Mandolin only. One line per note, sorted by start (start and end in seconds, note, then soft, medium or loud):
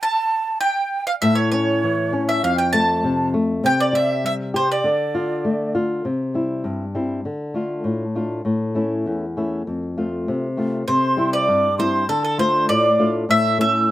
0.03 0.60 A5 medium
0.61 1.06 G5 medium
1.07 1.12 F5 medium
1.22 1.36 E5 medium
1.35 1.50 C#5 medium
1.52 2.30 C#5 medium
2.29 2.42 E5 medium
2.44 2.58 F5 medium
2.58 2.72 G5 medium
2.73 3.29 A5 medium
3.66 3.79 G5 loud
3.80 3.95 D5 medium
3.95 4.25 E5 medium
4.26 4.34 E5 medium
4.56 4.69 C5 medium
4.72 5.72 D5 medium
10.88 11.33 C5 medium
11.33 11.79 D5 medium
11.80 12.07 C5 medium
12.09 12.23 A4 medium
12.25 12.38 A4 medium
12.39 12.67 C5 medium
12.69 13.11 D5 medium
13.31 13.58 E5 loud
13.61 13.91 E5 loud